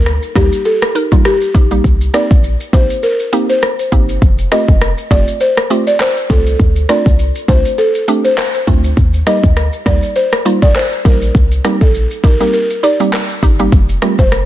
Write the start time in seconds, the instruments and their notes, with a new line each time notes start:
Already playing: 808-style bass D2
0.06 cross-stick, shaker
0.23 shaker
0.36 808-style bass D2, synth pluck G3 A#3 D#4 G4, marimba G4, kick, cross-stick, closed hi-hat, shaker
0.52 shaker
0.65 marimba A4, shaker
0.82 cross-stick, shaker
0.95 synth pluck D#4 A#4, closed hi-hat, shaker
1.12 synth pluck G3 A#3 D#4 F4, kick, shaker
1.25 marimba G4, cross-stick, shaker
1.42 shaker
1.54 808-style bass A#1, synth pluck D#4 G4, kick, closed hi-hat, shaker
1.71 synth pluck G3 A#3 D#4 G4, shaker
1.84 808-style bass C2, kick, shaker
2.01 shaker
2.14 synth pluck A#3 C4 D#4 G4, marimba D5, cross-stick, closed hi-hat, shaker
2.31 808-style bass A#1, kick, shaker
2.44 shaker
2.60 shaker
2.73 808-style bass A#1, synth pluck A#3 C4 D#4 G4, marimba C5, kick, closed hi-hat, shaker
2.90 shaker
3.03 marimba A#4, shaker
3.20 shaker
3.33 synth pluck A#3 C4 D#4 G4, closed hi-hat, shaker
3.49 marimba C5, shaker
3.62 cross-stick, shaker
3.79 shaker
3.92 808-style bass G1, synth pluck A#3 C4 D#4 G4, kick, closed hi-hat, shaker
4.09 shaker
4.22 808-style bass F1, kick, shaker
4.38 shaker
4.51 synth pluck A3 C4 F4 G4, marimba D#5, cross-stick, closed hi-hat, shaker
4.68 808-style bass F1, kick, shaker
4.81 cross-stick, shaker
4.98 shaker
5.11 808-style bass F1, synth pluck A3 C4 F4 G4, marimba D5, kick, closed hi-hat, shaker
5.28 shaker
5.40 marimba C5, shaker
5.57 cross-stick, shaker
5.70 synth pluck A3 C4 F4 G4, closed hi-hat, shaker
5.87 marimba D5, shaker
6.00 marimba C5, cross-stick, clap, shaker
6.17 shaker
6.30 808-style bass C2, synth pluck A3 C4 F4 G4, marimba A4, kick, closed hi-hat, shaker
6.46 shaker
6.59 808-style bass D2, kick, shaker
6.76 shaker
6.89 synth pluck A3 C4 D4 F4, marimba D5, cross-stick, closed hi-hat, shaker
7.06 808-style bass C2, kick, shaker
7.19 shaker
7.35 shaker
7.48 808-style bass C2, synth pluck A3 C4 D4 F4, marimba C5, kick, closed hi-hat, shaker
7.65 shaker
7.78 marimba A4, shaker
7.95 shaker
8.08 synth pluck A3 C4 D4 G4, closed hi-hat, shaker
8.24 marimba C5, shaker
8.38 cross-stick, clap, shaker
8.54 shaker
8.67 808-style bass D2, synth pluck A3 C4 D4 F4, kick, closed hi-hat, shaker
8.84 shaker
8.97 808-style bass D#2, kick, shaker
9.14 shaker
9.27 synth pluck G3 A#3 D#4 G4, marimba D#5, cross-stick, closed hi-hat, shaker
9.43 808-style bass D2, kick, shaker
9.57 cross-stick, shaker
9.73 shaker
9.86 808-style bass D2, synth pluck G3 A#3 D#4 G4, marimba D5, kick, cross-stick, closed hi-hat, shaker
10.03 shaker
10.16 marimba C5, shaker
10.32 cross-stick, shaker
10.45 synth pluck G3 A#3 D#4 F4, closed hi-hat, shaker
10.62 marimba D5, kick, shaker
10.75 marimba C5, cross-stick, clap, shaker
10.92 shaker
11.05 808-style bass A#1, synth pluck G3 A#3 D#4 G4, marimba A#4, kick, closed hi-hat, shaker
11.22 shaker
11.35 808-style bass C2, kick, shaker
11.51 shaker
11.64 synth pluck G3 A#3 C4 D#4 G4, cross-stick, closed hi-hat, shaker
11.81 808-style bass A#1, marimba A4, kick, shaker
11.94 shaker
12.11 shaker
12.24 808-style bass A#1, synth pluck D#4 G4, marimba A#4, kick, closed hi-hat, shaker
12.40 synth pluck G3 A#3 C4 D#4 G4, marimba A#4, shaker
12.53 marimba A#4, shaker
12.70 shaker
12.83 synth pluck D#4 G4, marimba D5, closed hi-hat, shaker
13.00 synth pluck G3 A#3 C4 D#4 G4, shaker
13.13 cross-stick, clap, shaker
13.30 shaker
13.43 808-style bass G1, synth pluck D#4 G4, kick, closed hi-hat, shaker
13.59 synth pluck G3 A#3 C4 D#4 G4, shaker
13.72 808-style bass F1, kick, shaker
13.89 shaker
14.02 synth pluck G3 A3 C4 F4 G4, cross-stick, closed hi-hat, shaker
14.19 808-style bass F1, marimba C5, kick, shaker
14.32 cross-stick, shaker